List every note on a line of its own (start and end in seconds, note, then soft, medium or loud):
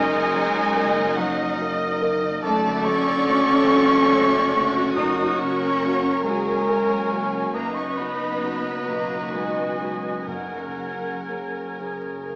0.00 2.39 F#1 medium
0.00 2.39 F#2 medium
0.00 2.41 F#2 medium
0.00 1.15 F#3 medium
0.00 2.25 F#3 medium
0.00 1.15 G#3 loud
0.00 0.12 A#3 medium
0.00 0.53 D#4 medium
0.00 2.25 D#4 medium
0.00 2.44 D#4 medium
0.00 0.32 A#4 medium
0.00 1.14 A#4 medium
0.00 1.14 D#5 medium
0.00 2.40 D#5 medium
0.00 1.15 G#5 loud
0.00 1.17 G#5 loud
0.13 0.73 A#3 medium
0.33 1.01 F#3 medium
0.33 1.99 A#4 medium
0.54 0.95 D#4 medium
0.75 1.57 A#3 medium
0.75 1.14 A#3 medium
0.75 1.14 D#4 medium
0.75 1.14 A#4 medium
0.96 1.36 D#4 medium
1.16 3.68 F#3 medium
1.16 1.60 F#3 loud
1.16 1.56 A#3 medium
1.16 1.56 D#4 medium
1.16 2.45 A#4 medium
1.16 2.40 D#5 medium
1.16 1.58 F#5 medium
1.16 1.59 F#5 medium
1.20 1.56 A#4 medium
1.37 1.78 D#4 medium
1.58 2.46 A#3 medium
1.58 2.00 A#3 medium
1.79 2.20 D#4 medium
2.00 2.40 A#3 medium
2.00 2.40 D#4 medium
2.00 2.46 A#4 medium
2.00 2.40 A#4 medium
2.21 2.46 D#4 medium
2.42 7.50 F#1 medium
2.42 4.95 F#2 medium
2.42 4.93 F#2 medium
2.42 3.67 D3 medium
2.42 4.92 D3 medium
2.42 2.83 A3 loud
2.42 4.93 A4 medium
2.42 4.70 A4 medium
2.42 4.65 D5 medium
2.42 4.93 D5 medium
2.42 2.86 A5 medium
2.42 2.83 A5 loud
2.64 5.00 D3 medium
2.85 3.53 F#3 medium
2.85 4.97 C#4 loud
2.85 4.53 F#4 medium
2.85 4.96 C#6 loud
2.85 4.97 C#6 loud
3.26 3.67 D3 medium
3.26 4.11 A3 medium
3.26 3.67 A3 medium
3.26 3.67 F#4 medium
3.69 4.09 D3 soft
3.69 7.59 F#3 medium
3.69 4.09 A3 medium
3.69 6.24 F#4 medium
3.69 4.10 F#4 medium
4.12 5.00 A3 medium
4.12 4.54 A3 medium
4.54 4.93 D3 soft
4.54 4.93 A3 medium
4.54 5.37 F#4 medium
4.54 4.94 F#4 medium
4.76 5.00 D4 medium
4.95 7.53 F#2 medium
4.95 7.50 F#2 medium
4.95 6.21 F#2 medium
4.95 5.39 D#4 medium
4.95 7.51 F#4 medium
4.95 6.21 A#4 medium
4.95 7.50 A#4 medium
4.95 7.51 A#4 medium
4.95 6.21 C#5 medium
4.95 5.38 D#6 medium
4.95 5.41 D#6 medium
5.18 5.59 C#4 medium
5.38 6.09 C#3 medium
5.38 6.25 C#4 loud
5.38 7.09 F#4 medium
5.38 6.25 C#6 medium
5.61 6.02 C#4 medium
5.82 6.65 A#3 soft
5.82 6.22 A#3 soft
5.82 6.22 C#4 soft
5.82 6.23 F#4 medium
6.03 6.44 C#4 medium
6.24 7.57 C#3 soft
6.24 7.51 G#3 medium
6.24 6.65 A#3 soft
6.24 6.65 C#4 soft
6.24 6.65 F#4 medium
6.24 6.67 G#4 medium
6.24 7.51 A#4 medium
6.24 7.56 C#5 medium
6.24 7.55 G#5 medium
6.24 7.54 G#5 medium
6.45 6.87 C#4 soft
6.67 7.57 A#3 medium
6.67 7.11 A#3 medium
6.67 7.11 A#4 medium
6.89 7.31 C#4 medium
7.10 7.51 A#3 soft
7.10 7.54 C#4 medium
7.10 7.51 C#4 soft
7.10 7.96 F#4 medium
7.10 7.51 F#4 soft
7.32 7.57 C#4 soft
7.53 12.36 F#1 medium
7.53 10.26 F#2 medium
7.53 10.24 F#2 medium
7.53 7.75 A#3 medium
7.53 10.12 D#4 medium
7.53 8.88 D#4 medium
7.53 10.30 B4 medium
7.53 10.24 B4 medium
7.53 10.12 D#5 medium
7.53 10.27 D#5 medium
7.53 7.76 A#5 medium
7.75 7.98 C#4 medium
7.75 8.18 D#4 medium
7.75 7.98 C#6 medium
7.97 8.70 F#3 soft
7.97 8.87 B3 medium
7.97 9.79 F#4 soft
7.97 8.58 B5 medium
7.97 8.88 B5 medium
8.19 8.63 D#4 soft
8.41 10.31 B2 soft
8.41 8.84 B3 soft
8.41 8.84 D#4 soft
8.41 8.85 F#4 soft
8.65 9.09 D#4 soft
8.87 9.30 B2 soft
8.87 12.36 F#3 soft
8.87 9.34 A#3 medium
8.87 9.30 D#4 soft
8.87 10.27 F#4 medium
8.87 9.31 F#4 soft
8.87 9.33 A#5 medium
8.87 9.31 A#5 medium
9.10 9.55 D#4 soft
9.33 10.28 G#3 medium
9.33 10.31 B3 soft
9.33 9.79 B3 soft
9.33 10.25 G#5 medium
9.33 10.30 G#5 medium
9.56 10.02 D#4 soft
9.80 10.24 B3 soft
9.80 10.24 D#4 soft
9.80 12.36 F#4 soft
9.80 10.24 F#4 soft
10.03 10.31 D#4 soft
10.27 12.36 F#2 soft
10.27 11.75 F#2 medium
10.27 12.36 F#2 soft
10.27 11.79 F#3 medium
10.27 12.36 G#4 medium
10.27 12.36 A#4 soft
10.27 11.61 A#4 soft
10.27 12.36 A#4 soft
10.27 11.79 F#5 medium
10.27 11.80 F#5 soft
10.27 12.36 G#5 soft
10.52 11.01 C#4 soft
10.77 11.60 C#3 soft
10.77 12.36 G#4 soft
11.02 11.53 C#4 soft
11.28 12.26 A#3 soft
11.28 11.75 A#3 soft
11.28 11.75 C#4 soft
11.28 11.75 G#4 soft
11.54 12.02 C#4 soft
11.78 12.36 C#3 soft
11.78 12.24 A#3 soft
11.78 12.24 C#4 soft
11.78 12.36 G#4 medium
11.78 12.25 G#4 soft
12.03 12.36 C#4 soft
12.27 12.36 A#3 soft